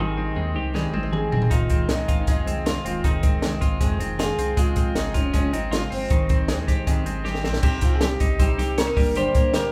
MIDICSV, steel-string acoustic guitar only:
0, 0, Header, 1, 2, 480
1, 0, Start_track
1, 0, Key_signature, -4, "minor"
1, 0, Tempo, 381922
1, 1904, Time_signature, 4, 2, 24, 8
1, 12215, End_track
2, 0, Start_track
2, 0, Title_t, "Steel-string acoustic guitar"
2, 0, Program_c, 0, 25
2, 0, Note_on_c, 0, 44, 59
2, 0, Note_on_c, 0, 51, 61
2, 0, Note_on_c, 0, 55, 69
2, 2, Note_on_c, 0, 60, 72
2, 5, Note_on_c, 0, 63, 68
2, 206, Note_off_c, 0, 63, 0
2, 212, Note_off_c, 0, 60, 0
2, 221, Note_on_c, 0, 63, 46
2, 222, Note_off_c, 0, 55, 0
2, 223, Note_off_c, 0, 51, 0
2, 225, Note_off_c, 0, 44, 0
2, 227, Note_on_c, 0, 60, 42
2, 237, Note_on_c, 0, 55, 37
2, 429, Note_off_c, 0, 55, 0
2, 434, Note_on_c, 0, 51, 53
2, 444, Note_on_c, 0, 55, 58
2, 449, Note_off_c, 0, 60, 0
2, 455, Note_off_c, 0, 63, 0
2, 464, Note_on_c, 0, 60, 53
2, 471, Note_on_c, 0, 63, 65
2, 669, Note_off_c, 0, 63, 0
2, 684, Note_off_c, 0, 60, 0
2, 684, Note_on_c, 0, 63, 54
2, 688, Note_off_c, 0, 51, 0
2, 693, Note_off_c, 0, 55, 0
2, 699, Note_on_c, 0, 60, 51
2, 717, Note_on_c, 0, 55, 45
2, 919, Note_off_c, 0, 55, 0
2, 919, Note_on_c, 0, 44, 78
2, 925, Note_off_c, 0, 60, 0
2, 927, Note_on_c, 0, 51, 84
2, 930, Note_off_c, 0, 63, 0
2, 934, Note_on_c, 0, 55, 90
2, 940, Note_on_c, 0, 60, 95
2, 945, Note_on_c, 0, 63, 89
2, 1142, Note_off_c, 0, 63, 0
2, 1157, Note_on_c, 0, 63, 56
2, 1162, Note_off_c, 0, 60, 0
2, 1171, Note_off_c, 0, 44, 0
2, 1175, Note_off_c, 0, 51, 0
2, 1175, Note_off_c, 0, 55, 0
2, 1177, Note_on_c, 0, 60, 44
2, 1190, Note_on_c, 0, 55, 44
2, 1399, Note_on_c, 0, 51, 48
2, 1403, Note_off_c, 0, 55, 0
2, 1405, Note_off_c, 0, 60, 0
2, 1410, Note_off_c, 0, 63, 0
2, 1418, Note_on_c, 0, 55, 53
2, 1420, Note_on_c, 0, 60, 54
2, 1435, Note_on_c, 0, 63, 48
2, 1647, Note_off_c, 0, 63, 0
2, 1652, Note_off_c, 0, 51, 0
2, 1657, Note_off_c, 0, 60, 0
2, 1661, Note_off_c, 0, 55, 0
2, 1662, Note_on_c, 0, 63, 47
2, 1672, Note_on_c, 0, 60, 41
2, 1691, Note_on_c, 0, 55, 37
2, 1903, Note_off_c, 0, 63, 0
2, 1905, Note_on_c, 0, 41, 62
2, 1908, Note_off_c, 0, 60, 0
2, 1910, Note_off_c, 0, 55, 0
2, 1912, Note_on_c, 0, 48, 69
2, 1915, Note_on_c, 0, 51, 69
2, 1929, Note_on_c, 0, 56, 60
2, 1929, Note_on_c, 0, 60, 69
2, 2116, Note_off_c, 0, 60, 0
2, 2131, Note_on_c, 0, 60, 40
2, 2138, Note_off_c, 0, 56, 0
2, 2141, Note_off_c, 0, 51, 0
2, 2145, Note_off_c, 0, 41, 0
2, 2148, Note_off_c, 0, 48, 0
2, 2153, Note_on_c, 0, 56, 40
2, 2156, Note_on_c, 0, 51, 37
2, 2370, Note_off_c, 0, 51, 0
2, 2377, Note_on_c, 0, 48, 57
2, 2378, Note_off_c, 0, 60, 0
2, 2381, Note_off_c, 0, 56, 0
2, 2385, Note_on_c, 0, 51, 54
2, 2396, Note_on_c, 0, 56, 55
2, 2402, Note_on_c, 0, 60, 55
2, 2611, Note_off_c, 0, 60, 0
2, 2621, Note_off_c, 0, 48, 0
2, 2624, Note_off_c, 0, 56, 0
2, 2625, Note_off_c, 0, 51, 0
2, 2626, Note_on_c, 0, 60, 46
2, 2639, Note_on_c, 0, 56, 45
2, 2651, Note_on_c, 0, 51, 40
2, 2863, Note_off_c, 0, 56, 0
2, 2866, Note_off_c, 0, 51, 0
2, 2866, Note_off_c, 0, 60, 0
2, 2869, Note_on_c, 0, 41, 71
2, 2875, Note_on_c, 0, 48, 72
2, 2878, Note_on_c, 0, 56, 73
2, 2881, Note_on_c, 0, 51, 82
2, 2891, Note_on_c, 0, 60, 82
2, 3076, Note_off_c, 0, 60, 0
2, 3091, Note_on_c, 0, 60, 49
2, 3095, Note_off_c, 0, 56, 0
2, 3101, Note_off_c, 0, 51, 0
2, 3107, Note_off_c, 0, 41, 0
2, 3110, Note_off_c, 0, 48, 0
2, 3110, Note_on_c, 0, 56, 46
2, 3116, Note_on_c, 0, 51, 37
2, 3338, Note_off_c, 0, 60, 0
2, 3340, Note_off_c, 0, 51, 0
2, 3345, Note_on_c, 0, 48, 48
2, 3348, Note_off_c, 0, 56, 0
2, 3355, Note_on_c, 0, 51, 54
2, 3362, Note_on_c, 0, 56, 51
2, 3372, Note_on_c, 0, 60, 56
2, 3560, Note_off_c, 0, 60, 0
2, 3574, Note_off_c, 0, 56, 0
2, 3575, Note_on_c, 0, 60, 50
2, 3586, Note_off_c, 0, 48, 0
2, 3589, Note_on_c, 0, 56, 41
2, 3591, Note_off_c, 0, 51, 0
2, 3606, Note_on_c, 0, 51, 36
2, 3821, Note_off_c, 0, 60, 0
2, 3822, Note_off_c, 0, 51, 0
2, 3823, Note_off_c, 0, 56, 0
2, 3826, Note_on_c, 0, 41, 65
2, 3826, Note_on_c, 0, 48, 66
2, 3835, Note_on_c, 0, 60, 67
2, 3837, Note_on_c, 0, 51, 69
2, 3838, Note_on_c, 0, 56, 69
2, 4032, Note_off_c, 0, 60, 0
2, 4047, Note_on_c, 0, 60, 50
2, 4048, Note_off_c, 0, 56, 0
2, 4063, Note_on_c, 0, 56, 40
2, 4064, Note_off_c, 0, 51, 0
2, 4066, Note_off_c, 0, 41, 0
2, 4067, Note_off_c, 0, 48, 0
2, 4079, Note_on_c, 0, 51, 38
2, 4297, Note_off_c, 0, 60, 0
2, 4299, Note_on_c, 0, 48, 59
2, 4304, Note_off_c, 0, 51, 0
2, 4305, Note_off_c, 0, 56, 0
2, 4319, Note_on_c, 0, 51, 57
2, 4324, Note_on_c, 0, 56, 57
2, 4327, Note_on_c, 0, 60, 65
2, 4524, Note_off_c, 0, 60, 0
2, 4535, Note_off_c, 0, 56, 0
2, 4539, Note_on_c, 0, 60, 58
2, 4543, Note_off_c, 0, 48, 0
2, 4550, Note_on_c, 0, 56, 47
2, 4553, Note_off_c, 0, 51, 0
2, 4572, Note_on_c, 0, 51, 45
2, 4777, Note_off_c, 0, 51, 0
2, 4783, Note_off_c, 0, 60, 0
2, 4787, Note_on_c, 0, 41, 87
2, 4789, Note_off_c, 0, 56, 0
2, 4793, Note_on_c, 0, 48, 83
2, 4793, Note_on_c, 0, 51, 91
2, 4807, Note_on_c, 0, 56, 96
2, 4807, Note_on_c, 0, 60, 89
2, 4999, Note_off_c, 0, 60, 0
2, 5014, Note_on_c, 0, 60, 52
2, 5016, Note_off_c, 0, 56, 0
2, 5027, Note_off_c, 0, 41, 0
2, 5030, Note_off_c, 0, 48, 0
2, 5030, Note_off_c, 0, 51, 0
2, 5031, Note_on_c, 0, 56, 49
2, 5046, Note_on_c, 0, 51, 45
2, 5258, Note_on_c, 0, 48, 50
2, 5260, Note_off_c, 0, 56, 0
2, 5261, Note_off_c, 0, 51, 0
2, 5261, Note_off_c, 0, 60, 0
2, 5275, Note_on_c, 0, 56, 53
2, 5276, Note_on_c, 0, 51, 50
2, 5286, Note_on_c, 0, 60, 57
2, 5494, Note_off_c, 0, 60, 0
2, 5503, Note_off_c, 0, 48, 0
2, 5508, Note_off_c, 0, 56, 0
2, 5509, Note_on_c, 0, 60, 47
2, 5512, Note_off_c, 0, 51, 0
2, 5523, Note_on_c, 0, 56, 47
2, 5529, Note_on_c, 0, 51, 40
2, 5745, Note_off_c, 0, 56, 0
2, 5746, Note_on_c, 0, 49, 65
2, 5749, Note_off_c, 0, 60, 0
2, 5750, Note_off_c, 0, 51, 0
2, 5755, Note_on_c, 0, 53, 71
2, 5760, Note_on_c, 0, 56, 67
2, 5763, Note_on_c, 0, 60, 77
2, 5963, Note_off_c, 0, 60, 0
2, 5974, Note_off_c, 0, 56, 0
2, 5978, Note_on_c, 0, 60, 49
2, 5985, Note_off_c, 0, 53, 0
2, 5987, Note_off_c, 0, 49, 0
2, 5989, Note_on_c, 0, 56, 45
2, 6000, Note_on_c, 0, 53, 42
2, 6219, Note_off_c, 0, 53, 0
2, 6224, Note_off_c, 0, 60, 0
2, 6227, Note_on_c, 0, 49, 56
2, 6229, Note_off_c, 0, 56, 0
2, 6234, Note_on_c, 0, 53, 62
2, 6243, Note_on_c, 0, 56, 60
2, 6251, Note_on_c, 0, 60, 68
2, 6445, Note_off_c, 0, 60, 0
2, 6460, Note_off_c, 0, 56, 0
2, 6460, Note_on_c, 0, 60, 47
2, 6468, Note_off_c, 0, 49, 0
2, 6472, Note_off_c, 0, 53, 0
2, 6475, Note_on_c, 0, 56, 42
2, 6485, Note_on_c, 0, 53, 39
2, 6694, Note_off_c, 0, 53, 0
2, 6705, Note_off_c, 0, 60, 0
2, 6706, Note_off_c, 0, 56, 0
2, 6706, Note_on_c, 0, 49, 72
2, 6710, Note_on_c, 0, 53, 82
2, 6721, Note_on_c, 0, 56, 77
2, 6724, Note_on_c, 0, 60, 83
2, 6927, Note_off_c, 0, 60, 0
2, 6937, Note_off_c, 0, 56, 0
2, 6942, Note_on_c, 0, 60, 47
2, 6948, Note_off_c, 0, 49, 0
2, 6950, Note_off_c, 0, 53, 0
2, 6952, Note_on_c, 0, 56, 40
2, 6974, Note_on_c, 0, 53, 40
2, 7173, Note_on_c, 0, 49, 53
2, 7174, Note_off_c, 0, 53, 0
2, 7178, Note_off_c, 0, 56, 0
2, 7186, Note_off_c, 0, 60, 0
2, 7190, Note_on_c, 0, 53, 58
2, 7193, Note_on_c, 0, 56, 48
2, 7201, Note_on_c, 0, 60, 60
2, 7415, Note_off_c, 0, 60, 0
2, 7422, Note_off_c, 0, 49, 0
2, 7429, Note_off_c, 0, 56, 0
2, 7430, Note_off_c, 0, 53, 0
2, 7430, Note_on_c, 0, 60, 49
2, 7444, Note_on_c, 0, 56, 42
2, 7457, Note_on_c, 0, 53, 38
2, 7671, Note_off_c, 0, 60, 0
2, 7674, Note_on_c, 0, 44, 57
2, 7677, Note_off_c, 0, 56, 0
2, 7681, Note_off_c, 0, 53, 0
2, 7682, Note_on_c, 0, 51, 58
2, 7686, Note_on_c, 0, 55, 67
2, 7689, Note_on_c, 0, 60, 71
2, 7695, Note_on_c, 0, 63, 80
2, 7895, Note_off_c, 0, 63, 0
2, 7907, Note_off_c, 0, 60, 0
2, 7910, Note_on_c, 0, 63, 46
2, 7912, Note_off_c, 0, 44, 0
2, 7916, Note_off_c, 0, 51, 0
2, 7918, Note_off_c, 0, 55, 0
2, 7922, Note_on_c, 0, 60, 45
2, 7938, Note_on_c, 0, 55, 38
2, 8142, Note_off_c, 0, 55, 0
2, 8147, Note_off_c, 0, 60, 0
2, 8148, Note_on_c, 0, 51, 62
2, 8150, Note_off_c, 0, 63, 0
2, 8157, Note_on_c, 0, 55, 69
2, 8162, Note_on_c, 0, 60, 62
2, 8168, Note_on_c, 0, 63, 66
2, 8367, Note_off_c, 0, 63, 0
2, 8382, Note_on_c, 0, 63, 57
2, 8384, Note_off_c, 0, 60, 0
2, 8389, Note_off_c, 0, 51, 0
2, 8394, Note_off_c, 0, 55, 0
2, 8399, Note_on_c, 0, 60, 44
2, 8413, Note_on_c, 0, 55, 45
2, 8626, Note_off_c, 0, 63, 0
2, 8635, Note_off_c, 0, 60, 0
2, 8636, Note_off_c, 0, 55, 0
2, 8637, Note_on_c, 0, 44, 75
2, 8641, Note_on_c, 0, 51, 89
2, 8649, Note_on_c, 0, 60, 84
2, 8651, Note_on_c, 0, 55, 89
2, 8659, Note_on_c, 0, 63, 86
2, 8852, Note_off_c, 0, 63, 0
2, 8866, Note_off_c, 0, 60, 0
2, 8867, Note_on_c, 0, 63, 45
2, 8874, Note_off_c, 0, 44, 0
2, 8876, Note_off_c, 0, 51, 0
2, 8881, Note_off_c, 0, 55, 0
2, 8881, Note_on_c, 0, 60, 51
2, 8895, Note_on_c, 0, 55, 40
2, 9089, Note_off_c, 0, 55, 0
2, 9090, Note_on_c, 0, 51, 54
2, 9097, Note_off_c, 0, 60, 0
2, 9102, Note_off_c, 0, 63, 0
2, 9104, Note_on_c, 0, 55, 62
2, 9112, Note_on_c, 0, 60, 63
2, 9117, Note_on_c, 0, 63, 62
2, 9311, Note_off_c, 0, 63, 0
2, 9326, Note_on_c, 0, 63, 52
2, 9327, Note_off_c, 0, 60, 0
2, 9340, Note_off_c, 0, 51, 0
2, 9342, Note_on_c, 0, 60, 45
2, 9343, Note_off_c, 0, 55, 0
2, 9358, Note_on_c, 0, 55, 40
2, 9578, Note_off_c, 0, 63, 0
2, 9586, Note_off_c, 0, 55, 0
2, 9586, Note_off_c, 0, 60, 0
2, 9591, Note_on_c, 0, 48, 72
2, 9601, Note_on_c, 0, 55, 76
2, 9606, Note_on_c, 0, 63, 79
2, 9607, Note_on_c, 0, 60, 87
2, 9802, Note_off_c, 0, 63, 0
2, 9816, Note_off_c, 0, 60, 0
2, 9817, Note_on_c, 0, 63, 49
2, 9829, Note_off_c, 0, 55, 0
2, 9831, Note_off_c, 0, 48, 0
2, 9832, Note_on_c, 0, 60, 42
2, 9844, Note_on_c, 0, 55, 40
2, 10060, Note_off_c, 0, 55, 0
2, 10063, Note_off_c, 0, 63, 0
2, 10067, Note_off_c, 0, 60, 0
2, 10068, Note_on_c, 0, 48, 57
2, 10075, Note_on_c, 0, 55, 53
2, 10082, Note_on_c, 0, 60, 64
2, 10095, Note_on_c, 0, 63, 65
2, 10289, Note_off_c, 0, 63, 0
2, 10301, Note_off_c, 0, 60, 0
2, 10304, Note_on_c, 0, 63, 47
2, 10309, Note_off_c, 0, 48, 0
2, 10312, Note_off_c, 0, 55, 0
2, 10316, Note_on_c, 0, 60, 47
2, 10331, Note_on_c, 0, 55, 42
2, 10540, Note_off_c, 0, 60, 0
2, 10543, Note_off_c, 0, 55, 0
2, 10543, Note_on_c, 0, 48, 73
2, 10546, Note_off_c, 0, 63, 0
2, 10555, Note_on_c, 0, 60, 82
2, 10558, Note_on_c, 0, 55, 74
2, 10561, Note_on_c, 0, 63, 79
2, 10773, Note_off_c, 0, 63, 0
2, 10786, Note_off_c, 0, 48, 0
2, 10787, Note_off_c, 0, 60, 0
2, 10788, Note_on_c, 0, 63, 51
2, 10793, Note_off_c, 0, 55, 0
2, 10802, Note_on_c, 0, 60, 46
2, 10819, Note_on_c, 0, 55, 40
2, 11028, Note_off_c, 0, 63, 0
2, 11035, Note_off_c, 0, 60, 0
2, 11035, Note_on_c, 0, 48, 51
2, 11040, Note_off_c, 0, 55, 0
2, 11053, Note_on_c, 0, 60, 59
2, 11055, Note_on_c, 0, 55, 53
2, 11070, Note_on_c, 0, 63, 59
2, 11254, Note_off_c, 0, 63, 0
2, 11259, Note_on_c, 0, 62, 46
2, 11270, Note_off_c, 0, 60, 0
2, 11271, Note_off_c, 0, 48, 0
2, 11275, Note_on_c, 0, 58, 49
2, 11278, Note_off_c, 0, 55, 0
2, 11293, Note_on_c, 0, 55, 40
2, 11503, Note_off_c, 0, 62, 0
2, 11510, Note_off_c, 0, 55, 0
2, 11511, Note_off_c, 0, 58, 0
2, 11517, Note_on_c, 0, 43, 67
2, 11518, Note_on_c, 0, 50, 72
2, 11525, Note_on_c, 0, 55, 75
2, 11532, Note_on_c, 0, 58, 77
2, 11535, Note_on_c, 0, 62, 72
2, 11726, Note_off_c, 0, 62, 0
2, 11741, Note_on_c, 0, 62, 49
2, 11750, Note_off_c, 0, 58, 0
2, 11752, Note_off_c, 0, 43, 0
2, 11752, Note_off_c, 0, 50, 0
2, 11756, Note_off_c, 0, 55, 0
2, 11765, Note_on_c, 0, 58, 48
2, 11773, Note_on_c, 0, 55, 41
2, 11980, Note_off_c, 0, 55, 0
2, 11982, Note_on_c, 0, 50, 59
2, 11983, Note_off_c, 0, 62, 0
2, 11992, Note_off_c, 0, 58, 0
2, 11996, Note_on_c, 0, 55, 61
2, 12007, Note_on_c, 0, 58, 62
2, 12017, Note_on_c, 0, 62, 70
2, 12194, Note_off_c, 0, 62, 0
2, 12211, Note_off_c, 0, 58, 0
2, 12215, Note_off_c, 0, 50, 0
2, 12215, Note_off_c, 0, 55, 0
2, 12215, End_track
0, 0, End_of_file